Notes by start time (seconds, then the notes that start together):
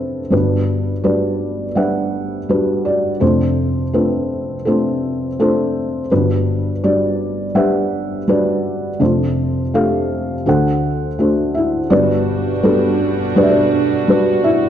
Already playing: F1 F2 A3 C4 D4 F4 A4 B4 C5 D5
0.30 G1 G2 G3 D4 F#4 B4
1.04 G3 D4 F#4 B4 D5
1.75 G3 D4 G4 B4 E5 F#5
2.49 G3 D4 F#4 B4
2.85 F#4 D5
3.20 F1 F2 A3 D4 F4 C5
3.93 A3 C4 D4 F4 B4
4.65 A3 C4 D4 F4 A4 C5
5.39 A3 C4 D4 F4 A4 C5
6.11 G1 G2 G3 D4 F#4 B4
6.84 G3 D4 F#4 D5
7.55 G3 D4 G4 B4 E5 F#5
8.28 G3 D4 F#4 B4 D5
9.00 F1 F2 A3 D4 F4 C5
9.04 F4
9.74 A3 D4 F4 G4 A4 F5
10.46 D2 D3 A3 D4 F#4 A4 C5 F#5
11.19 A3 D4 F#4 C5
11.54 E4 E5
11.90 G1 G2 B2 G3 D4 F#4 B4 D5
12.63 G3 B3 D4 F#4 A4 B4
13.36 G3 D4 F#4 B4 D5
13.43 E5
13.49 D4 B4 D5
14.08 G3 D4 F#4 B4
14.44 E4 E5